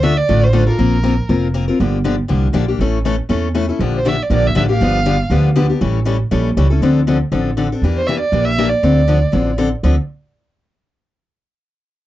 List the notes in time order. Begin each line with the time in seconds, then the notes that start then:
Already playing: D2
0.03 D3 A3 D4 F4 A4 E5
0.17 D5
0.29 A1 D3 A3 D4 F4 A4
0.43 C5
0.53 D3 A3 D4 F4 A4
0.67 D4 F4 A4 A#4
0.79 A#1 A#3 C4 F4 A#4
1.03 A#3 C4 F4 A#4
1.29 F1 A#3 C4 F4 A#4
1.54 A#3 C4 F4 A#4
1.68 C4 F4 A#4
1.80 G1 D3 F3 A#3 D4 G4
2.04 D3 F3 A#3 D4 G4
2.28 C2 D3 F3 A#3 D4 G4
2.53 A#1 D3 F3 A#3 D4 G4
2.68 A#3 D4 G4
2.79 A1 E3 A3 C#4 E4 A4
3.05 E3 A3 C#4 E4 A4
3.29 E2 E3 A3 C#4 E4 A4
3.54 E3 A3 C#4 E4 A4
3.69 C#4 E4 A4
3.79 A#1 D3 F3 A#3 D4 G4
3.97 C5
4.05 D3 F3 A#3 D4 G4 E5
4.22 D5
4.30 A#1 D3 F3 A#3 D4 G4 D5
4.46 E5
4.55 A1 D3 F3 A#3 D4 G4 E5
4.69 A#3 D4 G4 F5
4.81 G1 D3 F3 B3 D4 G4
5.06 D3 F3 B3 D4 G4
5.30 D2 D3 F3 B3 D4 G4
5.56 D3 F3 B3 D4 G4
5.69 B3 D4 G4
5.81 A1 E3 G3 C#4 E4 A4
6.05 E3 G3 C#4 E4 A4
6.31 A#1 E3 G3 C#4 E4 A4
6.57 C#2 E3 G3 C#4 E4 A4
6.70 C#4 E4 A4
6.81 D2 D3 F3 C4 D4 A4
7.07 D3 F3 C4 D4 A4
7.32 A1 D3 F3 C4 D4 A4
7.57 D3 F3 C4 D4 A4
7.72 C4 D4 A4
7.82 E2 E3 A#3 D4 G4
7.97 C5
8.06 E3 A#3 D4 G4 E5
8.20 D5
8.32 A#1 E3 A#3 D4 G4
8.45 E5
8.58 E3 A#3 D4 G4
8.69 D5
8.83 D2 D3 F3 C4 D4 A4
9.07 D3 F3 C4 D4 A4
9.32 A1 D3 F3 C4 D4 A4
9.58 D3 F3 C4 D4 A4
9.83 D2 D3 F3 C4 D4 A4